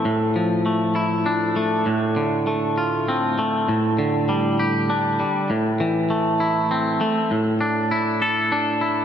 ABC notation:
X:1
M:3/4
L:1/8
Q:1/4=99
K:Ddor
V:1 name="Clean electric guitar"
A,, F, A, E D A, | A,, D, A, F C A, | A,, D, G, G D G, | A,, E, A, E C A, |
A,, D E A D E |]